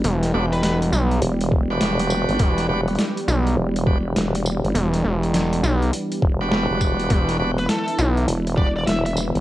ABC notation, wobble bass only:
X:1
M:4/4
L:1/16
Q:"Swing 16ths" 1/4=102
K:Em
V:1 name="Wobble bass" clef=bass
z8 E,,,4 E,,,3 G,,, | z2 E,,,2 z4 E,,,4 E,,,3 G,,, | z8 z2 E,,,3 E,,,3 | z2 E,,,2 z4 E,,,4 E,,,3 G,,, |]